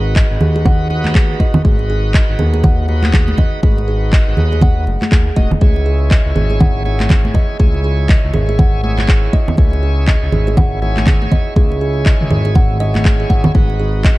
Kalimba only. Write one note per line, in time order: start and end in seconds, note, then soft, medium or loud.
0.16 0.29 D#5 loud
0.41 0.49 G#4 medium
0.56 0.65 G#4 medium
0.66 0.74 F#5 loud
1.15 1.29 G#4 medium
1.40 1.53 D#5 loud
1.65 1.73 G#4 medium
1.90 2.04 G#4 medium
2.14 2.28 D#5 loud
2.39 2.47 G#4 medium
2.54 2.64 G#4 medium
2.64 2.72 F#5 loud
3.14 3.28 G#4 medium
3.38 3.52 D#5 medium
3.63 3.71 G#4 loud
3.88 4.02 G#4 medium
4.13 4.26 D#5 loud
4.37 4.45 G#4 medium
4.52 4.62 G#4 medium
4.62 4.70 F#5 loud
5.12 5.26 G#4 medium
5.36 5.50 D#5 loud
5.61 5.69 G#4 loud
5.86 6.00 G#4 medium
6.11 6.24 D#5 loud
6.36 6.44 G#4 medium
6.51 6.60 G#4 medium
6.61 6.69 F#5 loud
7.10 7.24 G#4 medium
7.35 7.48 D#5 loud
7.60 7.68 G#4 loud
7.84 7.99 G#4 medium
8.09 8.23 D#5 loud
8.34 8.42 G#4 medium
8.49 8.58 G#4 medium
8.59 8.67 F#5 loud
9.08 9.23 G#4 medium
9.33 9.47 D#5 loud
9.58 9.66 G#4 loud
9.83 9.97 G#4 medium
10.08 10.21 D#5 loud
10.32 10.40 G#4 medium
10.47 10.57 G#4 medium
10.57 10.65 F#5 loud
11.07 11.21 G#4 medium
11.32 11.45 D#5 loud
11.56 11.64 G#4 loud
11.81 11.95 G#4 medium
12.06 12.19 D#5 loud
12.31 12.39 G#4 medium
12.46 12.55 G#4 medium
12.55 12.64 F#5 loud
12.80 12.88 D#5 loud
13.05 13.19 G#4 medium
13.20 13.29 G#4 medium
13.30 13.38 F#5 medium
13.55 13.63 G#4 loud
13.80 13.94 G#4 medium
14.04 14.18 D#5 loud